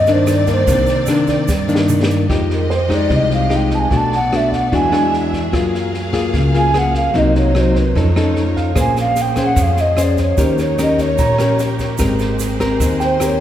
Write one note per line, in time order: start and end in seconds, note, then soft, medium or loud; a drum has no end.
0.00 0.63 G2 medium
0.00 0.66 G2 medium
0.00 2.26 C4 medium
0.00 2.26 A#4 medium
0.00 2.26 D5 medium
0.00 0.14 D#5 medium
0.07 0.45 D#3 medium
0.07 0.45 A#3 medium
0.07 0.45 D4 medium
0.07 snare soft
0.07 shaker soft
0.12 0.37 C5 medium
0.27 cross-stick medium
0.27 snare soft
0.27 shaker medium
0.36 0.52 D5 loud
0.47 0.64 D#3 medium
0.47 0.65 A#3 medium
0.47 0.65 D4 medium
0.47 kick soft
0.47 snare soft
0.47 shaker soft
0.52 1.06 C5 medium
0.67 0.86 C2 loud
0.67 1.46 C3 medium
0.67 1.05 D#3 medium
0.67 1.05 A#3 medium
0.67 1.05 D4 medium
0.67 kick medium
0.67 snare soft
0.67 shaker medium
0.87 snare soft
0.87 shaker soft
1.06 1.48 D#3 medium
1.06 1.48 A#3 medium
1.06 1.48 D4 medium
1.06 cross-stick medium
1.06 snare soft
1.06 shaker medium
1.27 1.69 D5 soft
1.27 kick soft
1.27 snare soft
1.27 shaker soft
1.48 2.27 G2 medium
1.48 2.25 G2 medium
1.48 kick medium
1.48 snare soft
1.48 shaker medium
1.68 2.26 D#3 medium
1.68 2.26 A#3 medium
1.68 2.26 D4 medium
1.68 shaker soft
1.75 snare medium
1.89 mid tom medium
1.89 shaker medium
2.03 snare medium
2.11 shaker soft
2.29 3.06 F2 medium
2.29 3.08 F3 medium
2.29 3.89 G#3 medium
2.29 2.70 G#3 medium
2.29 2.70 D#4 medium
2.29 3.90 F4 medium
2.29 3.90 G4 medium
2.29 2.70 G4 medium
2.29 3.90 D#5 medium
2.29 kick medium
2.29 cross-stick medium
2.29 snare soft
2.50 2.77 A#4 medium
2.50 snare soft
2.70 3.10 C5 soft
2.70 snare soft
2.75 2.96 C5 medium
2.89 3.47 G#3 medium
2.89 3.47 D#4 medium
2.89 3.47 G4 medium
2.89 kick soft
2.89 cross-stick medium
2.89 snare soft
2.94 3.17 D5 medium
3.10 3.87 C2 loud
3.10 3.89 C3 medium
3.10 kick medium
3.10 snare soft
3.15 3.33 D#5 medium
3.31 3.58 F5 medium
3.31 snare soft
3.50 3.89 G#3 medium
3.50 3.89 D#4 medium
3.50 3.89 G4 medium
3.50 cross-stick medium
3.50 snare soft
3.56 3.76 G5 medium
3.71 3.80 A5 medium
3.71 kick soft
3.71 snare soft
3.79 3.98 G#5 medium
3.90 4.68 B1 medium
3.90 4.70 B2 medium
3.90 7.91 F#3 medium
3.90 4.17 A3 medium
3.90 4.71 B3 medium
3.90 4.18 D4 medium
3.90 4.18 F#4 medium
3.90 4.71 A4 medium
3.90 4.71 D5 medium
3.90 kick medium
3.90 snare soft
3.97 4.14 A5 medium
4.12 4.38 F#5 medium
4.12 snare soft
4.32 4.71 A3 medium
4.32 4.71 D4 medium
4.32 4.71 F#4 medium
4.32 4.52 E5 medium
4.32 cross-stick medium
4.32 snare soft
4.52 4.76 F#5 medium
4.52 kick soft
4.52 snare soft
4.72 5.49 E2 loud
4.72 5.51 E3 medium
4.72 4.89 G#3 medium
4.72 4.89 D4 medium
4.72 5.52 D4 medium
4.72 4.89 F#4 medium
4.72 7.13 G#4 medium
4.72 5.52 E5 medium
4.72 5.14 G#5 medium
4.72 kick medium
4.72 snare soft
4.92 5.49 G#3 medium
4.92 5.50 D4 medium
4.92 5.50 F#4 medium
4.92 5.33 G#5 medium
4.92 cross-stick medium
4.92 snare soft
5.14 snare soft
5.33 kick soft
5.33 snare soft
5.52 6.30 F#2 medium
5.52 6.32 F#3 medium
5.52 7.93 A#3 medium
5.52 5.93 A#3 medium
5.52 5.93 F4 medium
5.52 5.93 G#4 medium
5.52 7.13 F5 medium
5.52 kick medium
5.52 cross-stick medium
5.52 snare soft
5.75 snare soft
5.94 snare soft
6.13 6.50 A#3 medium
6.13 6.51 F4 medium
6.13 6.51 G#4 medium
6.13 kick soft
6.13 cross-stick medium
6.13 snare soft
6.34 7.11 C#2 loud
6.34 7.13 C#3 medium
6.34 kick medium
6.34 snare soft
6.54 6.71 A#3 medium
6.54 6.71 F4 medium
6.54 6.72 G#4 medium
6.54 6.80 G#5 medium
6.54 snare soft
6.74 7.13 A#3 medium
6.74 7.13 F4 medium
6.74 7.13 G#4 medium
6.74 cross-stick medium
6.74 snare soft
6.78 6.96 F#5 medium
6.94 7.20 F5 medium
6.94 kick soft
6.94 snare soft
7.14 7.91 C2 medium
7.14 7.93 C3 medium
7.14 7.52 F#3 medium
7.14 7.52 A#3 medium
7.14 7.52 D#4 medium
7.14 7.94 D#4 medium
7.14 7.95 C5 medium
7.14 kick medium
7.14 snare soft
7.18 7.36 D#5 medium
7.35 7.62 C#5 medium
7.35 snare soft
7.55 7.83 F#3 medium
7.55 7.83 A#3 medium
7.55 7.83 D#4 medium
7.55 cross-stick medium
7.55 snare soft
7.61 7.79 C5 medium
7.75 7.97 B4 medium
7.75 kick soft
7.75 snare soft
7.95 8.73 F2 loud
7.95 8.74 F3 medium
7.95 8.75 A3 medium
7.95 8.08 C#4 medium
7.95 8.75 D#4 medium
7.95 8.08 D#4 medium
7.95 8.75 F4 medium
7.95 8.08 A4 medium
7.95 8.76 C#5 medium
7.95 kick medium
7.95 snare soft
7.99 8.10 A4 medium
8.16 8.74 C#4 medium
8.16 8.74 D#4 medium
8.16 8.74 A4 medium
8.16 cross-stick medium
8.16 snare soft
8.36 snare soft
8.56 8.94 F5 soft
8.56 kick soft
8.56 snare soft
8.75 9.53 A#1 medium
8.75 9.55 A#3 medium
8.75 13.40 A#3 medium
8.75 9.16 C#4 medium
8.75 10.37 C#4 medium
8.75 9.16 G#4 medium
8.75 10.37 G#4 medium
8.75 9.17 C5 medium
8.75 10.37 C5 medium
8.75 kick medium
8.75 cross-stick medium
8.75 snare soft
8.75 shaker medium
8.80 8.97 G#5 medium
8.96 snare soft
8.96 shaker soft
9.00 9.23 F5 loud
9.16 snare soft
9.16 shaker medium
9.21 9.41 G5 medium
9.36 9.94 C#4 medium
9.36 9.95 G#4 medium
9.36 9.95 C5 medium
9.36 kick soft
9.36 cross-stick medium
9.36 snare soft
9.36 shaker soft
9.41 9.47 G5 medium
9.46 9.64 F#5 medium
9.56 10.33 F2 loud
9.56 10.36 F3 medium
9.56 kick medium
9.56 snare soft
9.56 shaker medium
9.62 9.82 F5 medium
9.77 10.04 D#5 medium
9.77 snare soft
9.77 shaker soft
9.97 10.36 C#4 medium
9.97 10.36 G#4 medium
9.97 10.37 C5 medium
9.97 cross-stick medium
9.97 snare soft
9.97 shaker medium
10.02 10.20 D5 medium
10.17 kick soft
10.17 snare soft
10.17 shaker soft
10.22 10.44 C#5 medium
10.38 11.15 D#2 medium
10.38 11.17 D#3 medium
10.38 10.75 C#4 medium
10.38 11.99 D#4 medium
10.38 10.75 G4 medium
10.38 13.40 G4 medium
10.38 10.76 A#4 medium
10.38 11.98 C#5 medium
10.38 kick medium
10.38 snare soft
10.38 shaker medium
10.43 10.60 C5 medium
10.58 10.84 C#5 medium
10.58 snare soft
10.58 shaker soft
10.78 11.36 C#4 medium
10.78 11.36 G4 medium
10.78 11.36 A#4 medium
10.78 cross-stick medium
10.78 snare soft
10.78 shaker medium
10.82 11.03 D#5 medium
10.98 11.61 C#5 medium
10.98 kick soft
10.98 snare soft
10.98 shaker soft
11.18 11.96 A#1 medium
11.18 11.98 A#2 medium
11.18 11.59 A#5 soft
11.18 kick medium
11.18 snare soft
11.18 shaker medium
11.38 11.97 C#4 medium
11.38 11.97 G4 medium
11.38 11.97 A#4 medium
11.38 cross-stick medium
11.38 snare soft
11.38 shaker soft
11.59 snare soft
11.59 shaker medium
11.79 kick soft
11.79 snare soft
11.79 shaker soft
11.98 12.76 G#1 medium
11.98 12.78 G#3 medium
11.98 13.40 G#3 medium
11.98 12.57 C4 medium
11.98 12.56 G4 medium
11.98 12.57 A#4 medium
11.98 13.40 C5 medium
11.98 kick medium
11.98 cross-stick medium
11.98 snare soft
11.98 shaker medium
12.19 snare soft
12.19 shaker soft
12.39 snare soft
12.39 shaker medium
12.60 13.18 C4 medium
12.60 13.18 G4 medium
12.60 13.18 A#4 medium
12.60 kick soft
12.60 cross-stick medium
12.60 snare soft
12.60 shaker soft
12.79 13.40 D#2 medium
12.79 13.40 D#3 medium
12.79 kick medium
12.79 snare soft
12.79 shaker medium
13.00 13.28 C5 medium
13.00 13.40 G5 medium
13.00 snare soft
13.00 shaker soft
13.20 13.40 C4 medium
13.20 13.40 G4 medium
13.20 13.40 A#4 medium
13.20 cross-stick medium
13.20 snare soft
13.20 shaker medium
13.26 13.40 C#5 medium